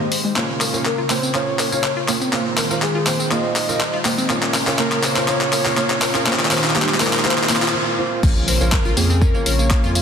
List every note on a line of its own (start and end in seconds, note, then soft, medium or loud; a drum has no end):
0.00 0.34 D#3 medium
0.00 0.34 G#3 medium
0.00 0.06 A#3 medium
0.00 0.34 G4 medium
0.00 0.32 C5 loud
0.00 0.34 C5 medium
0.00 0.36 C5 loud
0.12 open hi-hat medium
0.25 0.30 G#3 medium
0.36 0.71 A#2 medium
0.36 2.31 C#3 medium
0.36 0.43 A#3 medium
0.36 0.71 A#3 medium
0.36 2.31 A#3 medium
0.36 0.71 C#4 medium
0.36 0.71 F4 medium
0.36 6.23 F4 medium
0.36 0.71 C#5 medium
0.36 2.31 C#5 medium
0.36 0.71 F5 medium
0.36 clap medium
0.36 tambourine soft
0.36 riser medium
0.61 0.70 A#4 medium
0.61 clap medium
0.61 open hi-hat loud
0.61 tambourine medium
0.74 0.81 A#2 medium
0.74 0.81 A#3 medium
0.74 0.81 C#4 medium
0.74 0.81 F4 medium
0.74 0.83 A#4 medium
0.74 0.81 C#5 medium
0.74 0.81 F5 medium
0.74 tambourine soft
0.85 1.08 A#4 loud
0.85 1.08 A#4 medium
0.85 clap medium
0.85 tambourine soft
0.98 1.04 F4 medium
1.10 1.18 A#2 medium
1.10 1.18 A#3 medium
1.10 1.17 A#3 medium
1.10 1.18 C#4 medium
1.10 1.18 F4 medium
1.10 1.33 C5 loud
1.10 1.36 C5 loud
1.10 1.18 C#5 medium
1.10 1.18 G5 medium
1.10 clap medium
1.10 open hi-hat medium
1.10 tambourine medium
1.23 1.32 C4 medium
1.23 tambourine soft
1.35 1.69 A#2 medium
1.35 1.69 A#3 medium
1.35 1.41 A#3 medium
1.35 1.69 C#4 medium
1.35 1.69 F4 medium
1.35 2.29 C#5 loud
1.35 2.33 C#5 loud
1.35 1.69 C#5 medium
1.35 1.69 F5 medium
1.35 clap medium
1.35 tambourine soft
1.59 1.69 A#4 medium
1.59 clap medium
1.59 open hi-hat loud
1.59 tambourine medium
1.72 1.79 A#2 medium
1.72 1.79 A#3 medium
1.72 1.79 C#4 medium
1.72 1.79 F4 medium
1.72 1.81 A#4 medium
1.72 1.79 C#5 medium
1.72 1.79 F5 loud
1.72 tambourine soft
1.84 clap medium
1.84 tambourine soft
1.97 2.03 F4 medium
2.08 2.16 A#2 medium
2.08 2.16 A#3 medium
2.08 2.15 A#3 medium
2.08 2.16 C#4 medium
2.08 2.16 F4 medium
2.08 2.16 C#5 medium
2.08 2.16 G5 medium
2.08 clap medium
2.08 open hi-hat medium
2.08 tambourine medium
2.21 2.30 C4 medium
2.21 tambourine soft
2.33 2.67 A#2 medium
2.33 4.28 D#3 medium
2.33 4.28 G#3 medium
2.33 2.39 A#3 medium
2.33 2.67 A#3 medium
2.33 2.67 C4 medium
2.33 2.67 F4 medium
2.33 4.28 C5 medium
2.33 2.67 C5 medium
2.33 2.67 F5 medium
2.33 clap medium
2.33 tambourine soft
2.58 2.67 A#4 medium
2.58 clap medium
2.58 open hi-hat loud
2.58 tambourine medium
2.70 2.78 A#2 medium
2.70 2.78 A#3 medium
2.70 2.78 C4 medium
2.70 2.78 F4 medium
2.70 2.79 A#4 medium
2.70 2.78 C5 medium
2.70 2.78 F5 loud
2.70 tambourine soft
2.82 3.05 G#4 loud
2.82 3.09 G#4 medium
2.82 clap medium
2.82 tambourine soft
2.95 3.01 F4 loud
3.07 3.15 A#2 medium
3.07 3.13 A#3 medium
3.07 3.15 A#3 medium
3.07 3.15 C4 medium
3.07 3.15 F4 medium
3.07 3.15 C5 medium
3.07 3.33 C5 loud
3.07 3.30 C5 loud
3.07 3.15 G5 medium
3.07 clap medium
3.07 open hi-hat medium
3.07 tambourine medium
3.20 3.28 C4 medium
3.20 tambourine soft
3.31 3.66 A#2 medium
3.31 3.38 A#3 medium
3.31 3.66 A#3 medium
3.31 3.66 C4 medium
3.31 3.66 F4 medium
3.31 3.66 C5 medium
3.31 4.30 D#5 loud
3.31 4.26 D#5 loud
3.31 3.66 F5 medium
3.31 clap medium
3.31 tambourine soft
3.56 3.66 A#4 medium
3.56 clap medium
3.56 open hi-hat loud
3.56 tambourine medium
3.69 3.76 A#2 medium
3.69 3.76 A#3 medium
3.69 3.76 C4 medium
3.69 3.76 F4 medium
3.69 3.78 A#4 medium
3.69 3.76 C5 medium
3.69 3.76 F5 loud
3.69 tambourine soft
3.81 clap medium
3.81 tambourine soft
3.93 3.99 F4 loud
4.05 4.13 A#2 medium
4.05 4.12 A#3 medium
4.05 4.13 A#3 medium
4.05 4.13 C4 medium
4.05 4.13 F4 medium
4.05 4.13 C5 medium
4.05 4.13 G5 medium
4.05 clap medium
4.05 open hi-hat medium
4.05 tambourine medium
4.18 4.27 C4 medium
4.18 tambourine soft
4.30 4.64 A#2 medium
4.30 6.25 C#3 medium
4.30 6.25 A#3 medium
4.30 4.64 A#3 medium
4.30 4.36 A#3 medium
4.30 4.64 C#4 medium
4.30 4.64 F4 medium
4.30 4.64 C#5 medium
4.30 6.25 C#5 medium
4.30 4.64 F5 medium
4.30 clap medium
4.30 tambourine soft
4.43 clap medium
4.54 4.64 A#4 medium
4.54 clap medium
4.54 open hi-hat loud
4.54 tambourine medium
4.67 4.74 A#2 loud
4.67 4.74 A#3 medium
4.67 4.74 C#4 medium
4.67 4.74 F4 medium
4.67 4.76 A#4 medium
4.67 4.74 C#5 medium
4.67 4.74 F5 loud
4.67 clap medium
4.67 tambourine soft
4.79 5.13 A#2 medium
4.79 5.13 A#3 medium
4.79 4.85 A#3 medium
4.79 5.13 C#4 medium
4.79 5.13 F4 medium
4.79 5.02 A#4 loud
4.79 5.05 A#4 medium
4.79 5.13 C#5 medium
4.79 5.13 F5 medium
4.79 clap medium
4.79 tambourine soft
4.92 clap medium
5.03 5.13 A#4 medium
5.03 5.26 C5 loud
5.03 5.29 C5 loud
5.03 clap loud
5.03 open hi-hat medium
5.03 tambourine medium
5.16 5.23 A#2 loud
5.16 5.23 A#3 medium
5.16 5.23 C#4 medium
5.16 5.23 F4 medium
5.16 5.25 A#4 medium
5.16 5.23 C#5 medium
5.16 5.23 F5 loud
5.16 clap medium
5.16 tambourine soft
5.28 5.63 A#2 medium
5.28 5.63 A#3 medium
5.28 5.35 A#3 medium
5.28 5.63 C#4 medium
5.28 5.63 F4 medium
5.28 6.22 C#5 loud
5.28 6.26 C#5 loud
5.28 5.63 C#5 medium
5.28 5.63 F5 medium
5.28 clap loud
5.28 tambourine soft
5.41 clap medium
5.53 5.62 A#4 medium
5.53 clap loud
5.53 open hi-hat loud
5.53 tambourine medium
5.66 5.73 A#2 loud
5.66 5.73 A#3 medium
5.66 5.73 C#4 medium
5.66 5.73 F4 medium
5.66 5.74 A#4 medium
5.66 5.73 C#5 medium
5.66 5.73 F5 loud
5.66 clap medium
5.66 tambourine soft
5.77 6.12 A#2 medium
5.77 6.12 A#3 medium
5.77 5.84 A#3 medium
5.77 6.12 C#4 medium
5.77 6.12 F4 medium
5.77 6.12 C#5 medium
5.77 6.12 F5 medium
5.77 clap loud
5.77 tambourine soft
5.90 clap medium
6.02 6.12 A#4 medium
6.02 clap loud
6.02 open hi-hat medium
6.02 tambourine medium
6.15 6.22 A#2 loud
6.15 6.22 A#3 medium
6.15 6.22 C#4 medium
6.15 6.22 F4 medium
6.15 6.24 A#4 medium
6.15 6.22 C#5 medium
6.15 6.22 F5 loud
6.15 clap medium
6.15 tambourine soft
6.26 6.49 A#2 medium
6.26 7.73 D#3 medium
6.26 7.73 G#3 medium
6.26 6.49 A#3 medium
6.26 6.33 A#3 medium
6.26 6.49 C4 medium
6.26 6.49 F4 medium
6.26 7.73 G4 medium
6.26 6.49 C5 medium
6.26 7.73 C5 medium
6.26 6.49 F5 medium
6.26 clap loud
6.26 tambourine soft
6.33 clap medium
6.39 clap medium
6.45 clap medium
6.51 6.74 A#2 medium
6.51 6.74 A#3 medium
6.51 6.58 A#3 medium
6.51 6.74 C4 medium
6.51 6.74 F4 medium
6.51 6.74 C5 medium
6.51 6.74 F5 medium
6.51 clap loud
6.51 open hi-hat loud
6.51 tambourine medium
6.58 clap medium
6.64 clap medium
6.64 tambourine soft
6.70 clap medium
6.76 6.98 A#2 medium
6.76 6.98 A#3 medium
6.76 6.82 A#3 medium
6.76 6.98 C4 medium
6.76 6.98 F4 medium
6.76 6.99 G4 medium
6.76 7.02 G4 medium
6.76 6.98 C5 medium
6.76 6.98 F5 loud
6.76 clap loud
6.76 tambourine soft
6.82 clap medium
6.89 clap medium
6.94 clap medium
7.00 7.23 A#2 medium
7.00 7.07 A#3 medium
7.00 7.23 A#3 medium
7.00 7.23 C4 medium
7.00 7.23 F4 medium
7.00 7.23 A#4 loud
7.00 7.26 A#4 loud
7.00 7.23 C5 medium
7.00 7.23 F5 medium
7.00 clap loud
7.00 open hi-hat medium
7.00 tambourine medium
7.07 clap medium
7.13 clap medium
7.13 tambourine soft
7.19 clap medium
7.25 7.48 A#2 medium
7.25 7.31 A#3 medium
7.25 7.48 A#3 medium
7.25 7.48 C4 medium
7.25 7.48 F4 medium
7.25 7.71 C5 loud
7.25 7.48 C5 medium
7.25 7.74 C5 loud
7.25 7.48 F5 medium
7.25 clap loud
7.25 tambourine soft
7.31 clap loud
7.38 clap medium
7.44 clap medium
7.49 7.72 A#2 medium
7.49 7.56 A#3 medium
7.49 7.72 A#3 medium
7.49 7.72 C4 medium
7.49 7.72 F4 medium
7.49 7.72 C5 medium
7.49 7.72 F5 medium
7.49 clap loud
7.49 open hi-hat loud
7.49 tambourine medium
7.56 clap loud
7.62 clap loud
7.62 tambourine medium
7.68 clap loud
7.74 7.97 A#2 medium
7.74 7.97 A#3 medium
7.74 7.97 C4 medium
7.74 7.97 F4 medium
7.74 7.97 C5 medium
7.74 7.97 F5 medium
7.99 8.21 A#2 medium
7.99 8.21 A#3 medium
7.99 8.21 C4 medium
7.99 8.21 F4 medium
7.99 8.21 C5 medium
7.99 8.21 F5 loud
8.23 8.57 A#1 loud
8.23 10.02 C#3 medium
8.23 10.02 F3 medium
8.23 8.30 A#3 medium
8.23 10.02 A#3 medium
8.23 10.02 F4 medium
8.23 kick loud
8.23 crash loud
8.23 tambourine soft
8.23 impact medium
8.36 tambourine soft
8.48 8.57 A#4 medium
8.48 8.71 C5 medium
8.48 8.72 C5 medium
8.48 open hi-hat loud
8.48 tambourine medium
8.61 8.94 A#1 medium
8.61 8.68 A#2 medium
8.61 8.68 A#3 medium
8.61 8.68 C#4 medium
8.61 8.68 F4 medium
8.61 8.69 A#4 medium
8.61 8.68 C#5 medium
8.61 8.68 F5 loud
8.61 tambourine soft
8.72 8.95 A#4 medium
8.72 kick loud
8.72 clap loud
8.72 tambourine soft
8.85 8.91 F4 loud
8.85 tambourine soft
8.97 9.31 F2 loud
8.97 9.05 A#2 medium
8.97 9.03 A#3 medium
8.97 9.05 A#3 medium
8.97 9.05 C#4 medium
8.97 9.05 F4 medium
8.97 9.20 G#4 medium
8.97 9.23 G#4 medium
8.97 9.05 C#5 medium
8.97 9.05 G5 medium
8.97 open hi-hat medium
8.97 tambourine medium
9.10 9.19 C4 medium
9.10 tambourine soft
9.21 9.28 C#4 medium
9.21 9.48 A#4 loud
9.21 9.45 A#4 loud
9.21 kick loud
9.21 tambourine soft
9.34 9.46 A#2 medium
9.34 9.40 A#3 medium
9.34 9.46 A#3 medium
9.34 9.46 C#4 medium
9.34 9.46 F4 medium
9.34 9.46 C#5 medium
9.34 9.46 F5 medium
9.34 tambourine soft
9.46 9.80 A#1 medium
9.46 9.56 A#4 medium
9.46 9.92 C#5 loud
9.46 9.97 C#5 loud
9.46 open hi-hat loud
9.46 tambourine medium
9.59 9.68 A#3 medium
9.59 tambourine soft
9.71 10.02 A#2 medium
9.71 9.77 A#3 loud
9.71 10.02 A#3 medium
9.71 10.02 C#4 medium
9.71 10.02 F4 medium
9.71 10.02 C#5 medium
9.71 10.02 F5 loud
9.71 kick loud
9.71 clap loud
9.71 tambourine soft
9.84 10.02 F2 loud
9.84 9.89 F4 loud
9.84 tambourine soft
9.95 10.02 F5 loud
9.95 open hi-hat medium
9.95 tambourine medium